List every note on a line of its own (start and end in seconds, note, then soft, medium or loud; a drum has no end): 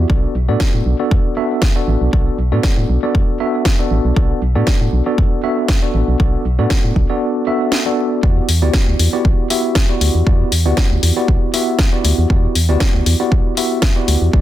0.10 0.27 B1 loud
0.10 0.34 B3 medium
0.10 0.34 D4 medium
0.10 0.34 F#4 medium
0.10 0.34 A4 medium
0.10 0.34 D5 medium
0.10 kick loud
0.35 0.50 B1 medium
0.49 0.56 A2 medium
0.49 0.96 B3 medium
0.49 0.96 D4 medium
0.49 0.96 F#4 medium
0.49 0.96 A4 medium
0.49 0.96 D5 medium
0.60 kick loud
0.60 snare loud
0.74 0.82 A2 medium
0.86 0.95 B1 loud
0.99 1.34 B3 medium
0.99 1.34 D4 medium
0.99 1.34 F#4 medium
0.99 1.34 A4 medium
0.99 1.34 D5 medium
1.11 1.20 F#2 medium
1.11 kick loud
1.37 1.73 B3 medium
1.37 1.73 D4 medium
1.37 1.73 F#4 medium
1.37 1.73 A4 medium
1.37 1.73 E5 medium
1.62 kick loud
1.62 snare loud
1.76 2.10 B3 medium
1.76 2.10 D4 medium
1.76 2.10 F#4 medium
1.76 2.10 A4 medium
1.76 2.10 D5 medium
1.88 1.96 A1 loud
2.01 2.09 B1 medium
2.13 2.30 B1 loud
2.13 2.38 B3 medium
2.13 2.38 D4 medium
2.13 2.38 F#4 medium
2.13 2.38 A4 medium
2.13 2.38 D5 medium
2.13 kick loud
2.39 2.54 B1 medium
2.52 2.60 A2 medium
2.52 3.00 B3 medium
2.52 3.00 D4 medium
2.52 3.00 F#4 medium
2.52 3.00 A4 medium
2.52 3.00 D5 medium
2.63 kick loud
2.63 snare loud
2.78 2.85 A2 medium
2.89 2.98 B1 loud
3.03 3.37 B3 medium
3.03 3.37 D4 medium
3.03 3.37 F#4 medium
3.03 3.37 A4 medium
3.03 3.37 D5 medium
3.15 3.24 F#2 medium
3.15 kick loud
3.40 3.76 B3 medium
3.40 3.76 D4 medium
3.40 3.76 F#4 medium
3.40 3.76 A4 medium
3.40 3.76 E5 medium
3.65 kick loud
3.65 snare loud
3.79 4.14 B3 medium
3.79 4.14 D4 medium
3.79 4.14 F#4 medium
3.79 4.14 A4 medium
3.79 4.14 D5 medium
3.91 4.00 A1 loud
4.05 4.12 B1 medium
4.16 4.34 B1 loud
4.16 4.41 B3 medium
4.16 4.41 D4 medium
4.16 4.41 F#4 medium
4.16 4.41 A4 medium
4.16 4.41 D5 medium
4.16 kick loud
4.42 4.57 B1 medium
4.55 4.63 A2 medium
4.55 5.03 B3 medium
4.55 5.03 D4 medium
4.55 5.03 F#4 medium
4.55 5.03 A4 medium
4.55 5.03 D5 medium
4.67 kick loud
4.67 snare loud
4.81 4.89 A2 medium
4.93 5.02 B1 loud
5.06 5.41 B3 medium
5.06 5.41 D4 medium
5.06 5.41 F#4 medium
5.06 5.41 A4 medium
5.06 5.41 D5 medium
5.18 5.27 F#2 medium
5.18 kick loud
5.44 5.79 B3 medium
5.44 5.79 D4 medium
5.44 5.79 F#4 medium
5.44 5.79 A4 medium
5.44 5.79 E5 medium
5.68 kick loud
5.68 snare loud
5.83 6.17 B3 medium
5.83 6.17 D4 medium
5.83 6.17 F#4 medium
5.83 6.17 A4 medium
5.83 6.17 D5 medium
5.94 6.03 A1 loud
6.08 6.16 B1 medium
6.20 6.37 B1 loud
6.20 6.44 B3 medium
6.20 6.44 D4 medium
6.20 6.44 F#4 medium
6.20 6.44 A4 medium
6.20 6.44 D5 medium
6.20 kick loud
6.45 6.60 B1 medium
6.59 6.67 A2 medium
6.59 7.06 B3 medium
6.59 7.06 D4 medium
6.59 7.06 F#4 medium
6.59 7.06 A4 medium
6.59 7.06 D5 medium
6.70 kick loud
6.70 snare loud
6.84 6.92 A2 medium
6.96 7.05 B1 loud
6.96 kick medium
7.10 7.44 B3 medium
7.10 7.44 D4 medium
7.10 7.44 F#4 medium
7.10 7.44 A4 medium
7.10 7.44 D5 medium
7.47 7.83 B3 medium
7.47 7.83 D4 medium
7.47 7.83 F#4 medium
7.47 7.83 A4 medium
7.47 7.83 E5 medium
7.72 snare loud
7.86 8.20 B3 medium
7.86 8.20 D4 medium
7.86 8.20 F#4 medium
7.86 8.20 A4 medium
7.86 8.20 D5 medium
8.23 8.40 E2 loud
8.23 8.48 B3 medium
8.23 8.48 E4 medium
8.23 8.48 F#4 medium
8.23 8.48 G4 medium
8.23 8.48 D5 medium
8.23 kick loud
8.49 8.64 E2 medium
8.49 open hi-hat loud
8.62 8.70 D2 medium
8.62 9.10 B3 medium
8.62 9.10 E4 medium
8.62 9.10 F#4 medium
8.62 9.10 G4 medium
8.62 9.10 D5 medium
8.73 kick loud
8.73 snare loud
8.88 8.95 D2 medium
8.99 9.08 E2 loud
8.99 open hi-hat medium
9.13 9.47 B3 medium
9.13 9.47 E4 medium
9.13 9.47 F#4 medium
9.13 9.47 G4 medium
9.13 9.47 D5 medium
9.25 9.34 B1 medium
9.25 kick loud
9.50 9.86 B3 medium
9.50 9.86 E4 medium
9.50 9.86 F#4 medium
9.50 9.86 G4 medium
9.50 9.86 E5 medium
9.50 open hi-hat loud
9.75 kick loud
9.75 snare loud
9.89 10.24 B3 medium
9.89 10.24 E4 medium
9.89 10.24 F#4 medium
9.89 10.24 G4 medium
9.89 10.24 D5 medium
10.01 10.10 D2 loud
10.01 open hi-hat medium
10.15 10.22 E2 medium
10.27 10.44 E2 loud
10.27 10.51 B3 medium
10.27 10.51 E4 medium
10.27 10.51 F#4 medium
10.27 10.51 G4 medium
10.27 10.51 D5 medium
10.27 kick loud
10.52 10.67 E2 medium
10.52 open hi-hat loud
10.66 10.73 D2 medium
10.66 11.13 B3 medium
10.66 11.13 E4 medium
10.66 11.13 F#4 medium
10.66 11.13 G4 medium
10.66 11.13 D5 medium
10.77 kick loud
10.77 snare loud
10.91 10.99 D2 medium
11.03 11.12 E2 loud
11.03 open hi-hat medium
11.16 11.51 B3 medium
11.16 11.51 E4 medium
11.16 11.51 F#4 medium
11.16 11.51 G4 medium
11.16 11.51 D5 medium
11.28 11.37 B1 medium
11.28 kick loud
11.54 11.89 B3 medium
11.54 11.89 E4 medium
11.54 11.89 F#4 medium
11.54 11.89 G4 medium
11.54 11.89 E5 medium
11.54 open hi-hat loud
11.79 kick loud
11.79 snare loud
11.93 12.27 B3 medium
11.93 12.27 E4 medium
11.93 12.27 F#4 medium
11.93 12.27 G4 medium
11.93 12.27 D5 medium
12.05 12.13 D2 loud
12.05 open hi-hat medium
12.18 12.26 E2 medium
12.30 12.47 E2 loud
12.30 12.54 B3 medium
12.30 12.55 E4 medium
12.30 12.54 F#4 medium
12.30 12.54 G4 medium
12.30 12.55 D5 medium
12.30 kick loud
12.55 12.71 E2 medium
12.55 open hi-hat loud
12.69 12.77 D2 medium
12.69 13.17 B3 medium
12.69 13.17 E4 medium
12.69 13.17 F#4 medium
12.69 13.17 G4 medium
12.69 13.17 D5 loud
12.80 kick loud
12.80 snare loud
12.94 13.02 D2 medium
13.06 13.15 E2 loud
13.06 open hi-hat medium
13.20 13.54 B3 medium
13.20 13.54 E4 medium
13.20 13.54 F#4 medium
13.20 13.54 G4 medium
13.20 13.54 D5 medium
13.32 13.41 B1 medium
13.32 kick loud
13.57 13.93 B3 medium
13.57 13.93 E4 medium
13.57 13.93 F#4 medium
13.57 13.93 G4 medium
13.57 13.93 E5 medium
13.57 open hi-hat loud
13.82 kick loud
13.82 snare loud
13.96 14.31 B3 medium
13.96 14.31 E4 medium
13.96 14.31 F#4 medium
13.96 14.31 G4 medium
13.96 14.31 D5 medium
14.08 14.17 D2 loud
14.08 open hi-hat medium
14.22 14.29 E2 medium
14.33 14.41 E2 loud
14.33 14.41 B3 medium
14.33 14.41 E4 medium
14.33 14.41 F#4 medium
14.33 14.41 G4 medium
14.33 14.41 D5 medium
14.33 kick loud